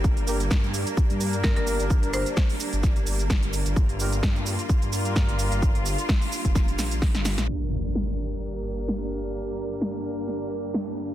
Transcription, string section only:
0.00 7.44 G3 medium
0.00 7.44 A#3 medium
0.04 3.75 D4 medium
3.77 7.47 F4 medium
7.48 11.14 G2 medium
7.48 11.14 G3 medium
7.48 11.14 A#3 medium
7.48 11.14 D4 medium

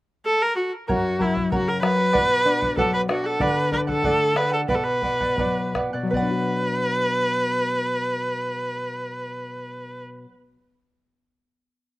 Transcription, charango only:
0.88 1.18 A#4 medium
0.88 1.19 C#5 medium
0.88 1.20 F#5 medium
1.19 1.36 A#4 soft
1.19 1.36 C#5 soft
1.19 1.34 F#5 soft
1.35 1.51 C#5 soft
1.35 1.51 F#5 soft
1.52 1.81 A#4 medium
1.52 1.82 C#5 medium
1.52 1.82 F#5 medium
1.82 1.98 A#4 medium
1.82 1.98 C#5 medium
1.82 1.96 F#5 medium
1.97 2.15 C#5 soft
1.97 2.12 F#5 soft
2.13 2.43 B4 medium
2.13 2.44 D5 medium
2.13 2.45 F#5 medium
2.45 2.61 B4 medium
2.45 2.61 D5 medium
2.45 2.60 F#5 medium
2.61 2.76 D5 soft
2.61 2.77 F#5 soft
2.77 3.07 B4 medium
2.77 3.08 D5 medium
2.77 3.09 F#5 medium
3.08 3.24 B4 medium
3.08 3.24 D5 medium
3.08 3.23 F#5 medium
3.24 3.39 D5 soft
3.24 3.39 F#5 medium
3.39 3.70 A4 medium
3.39 3.71 D5 medium
3.39 3.72 F#5 medium
3.71 3.87 A4 medium
3.71 3.88 D5 medium
3.71 3.86 F#5 medium
3.87 4.03 D5 soft
3.87 4.03 F#5 soft
4.04 4.34 A4 medium
4.04 4.35 D5 medium
4.04 4.36 F#5 medium
4.36 4.52 A4 medium
4.36 4.53 D5 medium
4.36 4.50 F#5 medium
4.51 4.68 D5 soft
4.51 4.68 F#5 soft
4.68 5.01 B4 medium
4.68 5.01 D5 medium
4.68 5.03 F#5 medium
5.02 5.20 B4 soft
5.02 5.20 D5 soft
5.02 5.19 F#5 soft
5.21 5.38 D5 soft
5.21 5.38 F#5 soft
5.38 5.74 B4 medium
5.38 5.74 D5 medium
5.38 5.75 F#5 medium
5.75 5.93 B4 medium
5.75 5.93 D5 medium
5.75 5.92 F#5 medium
5.93 6.10 D5 soft
5.93 6.12 F#5 medium
6.11 10.46 B4 medium
6.11 10.49 D5 medium
6.17 10.52 F#5 medium

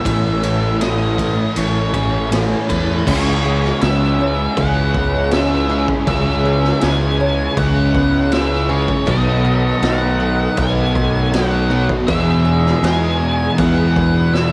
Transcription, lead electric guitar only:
0.00 0.81 E5 medium
0.81 1.57 D#5 loud
1.58 2.28 C#5 medium
2.70 3.08 B4 medium
3.08 3.82 C#5 loud
3.82 4.59 E5 loud
4.58 5.29 F#5 loud
5.33 5.85 E5 loud
6.08 6.85 E5 loud
6.83 7.58 G#5 loud
7.58 8.35 F#5 loud
8.33 8.71 E5 medium
8.71 9.09 C#5 medium
9.09 9.86 D#5 loud
9.83 10.58 F#5 loud
10.59 11.34 G#5 loud
11.34 11.86 F#5 loud
12.07 12.85 E5 loud
12.84 13.58 G#5 loud
13.58 14.36 F#5 medium
14.34 14.52 E5 medium

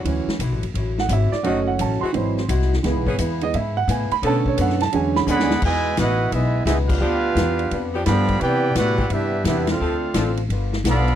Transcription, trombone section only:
5.27 5.60 D3 loud
5.27 5.60 G#3 medium
5.27 5.60 B3 loud
5.63 5.95 B2 medium
5.63 5.95 E3 medium
5.63 5.95 G#3 medium
5.97 6.30 B3 loud
5.97 6.30 E4 medium
5.97 6.30 F#4 medium
6.33 6.65 G#3 medium
6.33 6.66 B3 medium
6.33 6.66 E4 medium
6.66 6.77 G#3 medium
6.66 6.78 B3 medium
6.66 6.77 E4 medium
6.89 7.90 B3 medium
6.89 7.90 D4 medium
6.89 7.90 F4 medium
8.05 8.38 D3 loud
8.05 8.38 F3 loud
8.05 8.38 B3 medium
8.41 8.74 B3 medium
8.41 8.76 E4 medium
8.41 8.76 G4 medium
8.75 9.08 G3 medium
8.75 9.08 B3 medium
8.75 9.08 F#4 medium
9.10 9.45 G3 medium
9.10 9.45 B3 medium
9.10 9.45 E4 medium
9.46 9.67 G3 medium
9.46 9.67 B3 medium
9.46 9.67 E4 medium
9.70 10.40 A3 medium
9.70 10.40 C4 medium
9.70 10.40 F4 medium
10.87 11.15 D3 medium
10.87 11.15 F3 medium
10.87 11.15 B3 medium

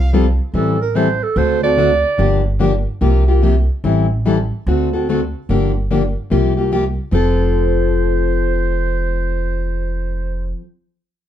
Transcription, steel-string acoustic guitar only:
0.13 0.25 F3 medium
0.13 0.25 G3 medium
0.13 0.25 C4 medium
0.13 0.25 F4 medium
0.13 0.26 A4 medium
0.54 0.76 E3 medium
0.54 0.76 G3 medium
0.54 0.77 C4 medium
0.54 0.77 E4 medium
0.54 0.77 A4 medium
0.95 1.07 E3 medium
0.95 1.07 G3 medium
0.95 1.07 C4 medium
0.95 1.08 E4 medium
0.95 1.08 A4 medium
1.36 1.58 D3 medium
1.36 1.59 A3 medium
1.36 1.59 C4 medium
1.36 1.59 F#4 medium
1.36 1.59 A4 medium
1.63 1.77 C4 soft
1.63 1.77 F#4 soft
1.63 1.78 A4 medium
1.78 1.89 D3 medium
1.78 1.89 A3 medium
1.78 1.90 C4 medium
1.78 1.90 F#4 medium
1.78 1.90 A4 medium
2.18 2.40 D3 medium
2.18 2.41 F3 medium
2.18 2.41 A#3 medium
2.18 2.41 D4 medium
2.18 2.41 G4 medium
2.59 2.71 D3 medium
2.59 2.72 F3 medium
2.59 2.72 A#3 medium
2.59 2.72 D4 medium
2.59 2.72 G4 medium
3.01 3.23 C3 medium
3.01 3.23 F3 medium
3.01 3.23 A#3 medium
3.01 3.24 F4 medium
3.01 3.24 G4 medium
3.28 3.42 A#3 soft
3.28 3.42 F4 soft
3.28 3.42 G4 medium
3.42 3.54 C3 medium
3.42 3.54 F3 medium
3.42 3.54 A#3 medium
3.42 3.55 F4 medium
3.42 3.55 G4 medium
3.84 4.06 E3 medium
3.84 4.06 G3 medium
3.84 4.06 C4 medium
3.84 4.06 E4 medium
3.84 4.06 A4 medium
4.25 4.37 E3 medium
4.25 4.37 G3 medium
4.25 4.37 C4 medium
4.25 4.37 E4 medium
4.25 4.38 A4 medium
4.67 4.89 D3 medium
4.67 4.89 A3 medium
4.67 4.89 C4 medium
4.67 4.89 F#4 medium
4.67 4.89 A4 medium
4.93 5.08 C4 soft
4.93 5.08 F#4 soft
4.93 5.07 A4 medium
5.09 5.20 D3 medium
5.09 5.20 A3 medium
5.09 5.20 C4 medium
5.09 5.20 F#4 medium
5.09 5.20 A4 medium
5.50 5.71 D3 medium
5.50 5.71 F3 medium
5.50 5.71 A#3 medium
5.50 5.71 D4 medium
5.50 5.71 G4 medium
5.91 6.02 D3 medium
5.91 6.02 F3 medium
5.91 6.02 A#3 medium
5.91 6.02 D4 medium
5.91 6.02 G4 medium
6.30 6.52 C3 medium
6.30 6.53 F3 medium
6.30 6.53 A#3 medium
6.30 6.53 F4 medium
6.30 6.53 G4 medium
6.57 6.71 A#3 soft
6.57 6.71 F4 soft
6.57 6.71 G4 medium
6.72 6.83 C3 medium
6.72 6.83 F3 medium
6.72 6.84 A#3 medium
6.72 6.84 F4 medium
6.72 6.84 G4 medium
7.11 10.61 F3 medium
7.11 10.63 C4 medium
7.11 10.64 F4 medium
7.11 10.65 A4 medium

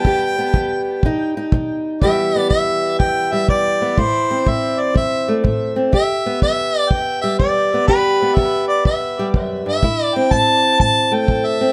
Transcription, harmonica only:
0.00 1.17 G5 loud
2.02 2.47 E5 medium
2.49 2.96 E5 medium
2.99 3.33 G5 loud
3.32 3.48 E5 medium
3.49 4.00 D5 medium
3.99 4.50 C5 medium
4.48 4.82 E5 medium
4.80 4.96 D5 medium
4.97 5.42 E5 medium
5.94 6.39 E5 medium
6.42 6.79 E5 medium
6.79 6.91 D5 medium
6.90 7.21 G5 loud
7.21 7.38 E5 medium
7.39 7.85 D5 medium
7.87 8.36 B4 medium
8.35 8.67 E5 medium
8.67 8.84 D5 medium
8.85 9.31 E5 medium
9.67 10.03 E5 medium
10.03 10.16 D5 medium
10.15 10.34 G5 medium
10.32 10.80 A5 medium
10.80 11.15 A5 loud
11.13 11.47 G5 medium
11.46 11.73 E5 medium

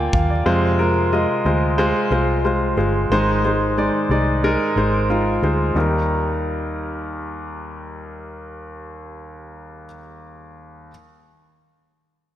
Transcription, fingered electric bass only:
0.13 0.44 D#2 medium
0.46 1.25 F2 medium
1.45 1.91 D2 medium
2.10 2.73 C2 medium
2.77 3.08 G1 medium
3.10 3.89 G#1 medium
4.09 4.56 C2 medium
4.76 5.38 G#1 medium
5.42 5.73 D2 medium
5.75 9.85 D#2 medium

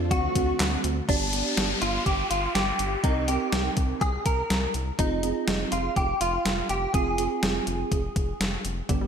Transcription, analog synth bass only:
0.00 0.13 F2 loud
0.11 0.28 D2 loud
0.36 0.53 D2 loud
0.60 0.77 D2 loud
0.84 1.01 D2 loud
1.09 1.43 G1 loud
1.57 1.74 G1 medium
1.82 1.99 G1 medium
2.06 2.23 G1 loud
2.31 2.48 G1 medium
2.55 2.72 G1 loud
2.79 2.96 G1 loud
3.04 3.38 C2 loud
3.52 3.70 C2 medium
3.77 3.94 C2 loud
4.01 4.18 C2 loud
4.26 4.43 C2 medium
4.50 4.67 C2 loud
4.74 4.92 C2 medium
4.99 5.33 F1 loud
5.48 5.65 F1 loud
5.72 5.89 F1 medium
5.96 6.13 F1 loud
6.21 6.38 F1 loud
6.45 6.62 F1 loud
6.70 6.87 F1 loud
6.94 7.28 F1 loud
7.43 7.60 F1 medium
7.67 7.84 F1 medium
7.92 8.09 F1 loud
8.16 8.33 F1 medium
8.40 8.57 F1 loud
8.65 8.82 F1 loud
8.89 9.07 G1 loud

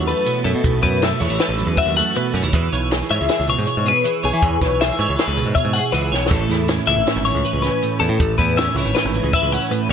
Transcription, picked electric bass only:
0.00 0.11 D#2 medium
0.45 0.52 F#2 medium
0.55 0.62 B2 medium
0.64 0.79 B1 medium
0.82 1.12 F#2 medium
1.21 1.28 E2 medium
1.30 1.38 A1 medium
1.49 1.64 A1 medium
1.67 1.75 E2 medium
1.86 2.01 D#2 medium
2.34 2.41 F#2 medium
2.43 2.51 D#2 medium
2.53 2.68 E2 medium
2.73 3.01 B1 medium
3.11 3.18 G#2 medium
3.21 3.28 C#2 medium
3.40 3.54 C#2 medium
3.58 3.65 G#2 medium
3.77 3.91 G#2 medium
4.24 4.31 B1 medium
4.33 4.40 E3 medium
4.42 4.57 E2 medium
4.61 4.90 B1 medium
4.99 5.06 G#2 medium
5.09 5.16 C#2 medium
5.28 5.42 C#2 medium
5.46 5.53 G#2 medium
5.65 5.79 G#2 medium
5.93 6.10 C#2 medium
6.12 6.29 B1 medium
6.31 6.45 A1 medium
6.50 6.79 E2 medium
6.87 6.95 C#2 medium
6.97 7.04 G#1 medium
7.16 7.31 G#1 medium
7.35 7.42 C#2 medium
7.53 7.68 C#2 medium
8.01 8.08 E2 medium
8.09 8.17 A2 medium
8.20 8.34 A1 medium
8.38 8.67 E2 medium
8.75 8.83 C#2 medium
8.85 8.93 G#1 medium
9.05 9.19 G#1 medium
9.23 9.31 C#2 medium
9.42 9.57 C#2 medium
9.89 9.93 E2 medium

